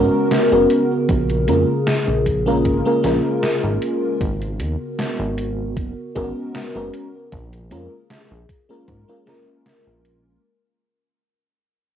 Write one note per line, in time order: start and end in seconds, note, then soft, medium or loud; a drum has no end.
0.00 10.40 C#3 medium
0.00 0.47 G#3 loud
0.00 0.47 B3 medium
0.00 1.06 B3 medium
0.00 0.47 C#4 medium
0.00 0.47 F#4 medium
0.00 1.06 F#4 medium
0.00 0.47 A#4 loud
0.00 4.17 A#4 medium
0.31 snare loud
0.31 closed hi-hat medium
0.51 0.67 F#1 loud
0.51 0.82 G#3 medium
0.51 0.83 B3 medium
0.51 0.83 C#4 medium
0.51 0.83 F#4 medium
0.51 0.83 A#4 medium
0.70 closed hi-hat medium
1.09 1.50 A#1 loud
1.09 4.17 G#4 medium
1.09 kick loud
1.09 closed hi-hat medium
1.30 closed hi-hat soft
1.48 1.65 F2 medium
1.48 1.69 G#3 medium
1.48 1.69 A#3 medium
1.48 1.69 C#4 medium
1.48 1.69 F4 medium
1.48 1.69 A#4 medium
1.48 closed hi-hat medium
1.87 snare loud
1.87 closed hi-hat medium
2.08 2.66 A#1 medium
2.26 kick medium
2.26 closed hi-hat medium
2.46 2.80 G#3 medium
2.46 2.80 A#3 medium
2.46 2.81 C#4 medium
2.46 2.81 F4 medium
2.46 2.81 A#4 loud
2.65 2.81 G#1 medium
2.65 kick loud
2.65 closed hi-hat medium
2.85 3.00 G#3 medium
2.85 3.00 A#3 medium
2.85 3.00 C#4 medium
2.85 3.00 F4 medium
2.85 3.01 A#4 loud
3.02 3.21 A#1 medium
3.02 4.18 G#3 medium
3.02 4.18 A#3 medium
3.02 4.18 C#4 medium
3.02 4.19 F4 medium
3.02 4.19 A#4 loud
3.02 snare medium
3.02 closed hi-hat medium
3.43 snare loud
3.43 closed hi-hat medium
3.64 3.78 G#1 loud
3.82 closed hi-hat medium
4.20 4.61 G#1 loud
4.20 7.29 B3 medium
4.20 7.29 F#4 medium
4.20 10.40 A#4 medium
4.20 kick loud
4.20 closed hi-hat medium
4.42 closed hi-hat soft
4.60 4.76 D#2 medium
4.60 closed hi-hat medium
4.99 snare loud
4.99 closed hi-hat medium
5.20 5.78 G#1 medium
5.38 closed hi-hat medium
5.77 5.93 F#1 medium
5.77 kick loud
5.77 closed hi-hat medium
6.15 6.32 G#1 medium
6.15 6.70 G#3 loud
6.15 6.70 B3 medium
6.15 6.70 C#4 medium
6.15 6.70 F#4 medium
6.15 6.71 A#4 loud
6.15 kick loud
6.15 closed hi-hat medium
6.54 snare loud
6.54 closed hi-hat medium
6.75 6.90 F#1 loud
6.75 7.06 G#3 medium
6.75 7.06 B3 medium
6.75 7.06 C#4 medium
6.75 7.06 F#4 medium
6.75 7.07 A#4 medium
6.93 closed hi-hat medium
7.32 7.73 A#1 loud
7.32 10.41 G#4 medium
7.32 kick loud
7.32 closed hi-hat medium
7.53 closed hi-hat soft
7.71 7.88 F2 medium
7.71 7.92 G#3 medium
7.71 7.92 A#3 medium
7.71 7.92 C#4 medium
7.71 7.92 F4 medium
7.71 7.93 A#4 medium
7.71 closed hi-hat medium
8.10 snare loud
8.10 closed hi-hat medium
8.31 8.46 A#1 loud
8.49 kick medium
8.49 closed hi-hat medium
8.69 9.04 G#3 medium
8.69 9.04 A#3 medium
8.69 9.04 C#4 medium
8.69 9.04 F4 medium
8.69 9.04 A#4 loud
8.88 9.05 G#2 medium
8.88 kick loud
8.88 closed hi-hat medium
9.08 9.23 G#3 medium
9.08 9.23 A#3 medium
9.08 9.23 C#4 medium
9.08 9.24 F4 medium
9.08 9.24 A#4 medium
9.26 10.41 G#3 medium
9.26 10.42 A#3 medium
9.26 10.42 C#4 medium
9.26 10.42 F4 medium
9.26 10.43 A#4 medium
9.26 snare medium
9.26 closed hi-hat medium
9.66 snare loud
9.66 closed hi-hat medium
9.87 10.38 A#1 medium
10.05 closed hi-hat medium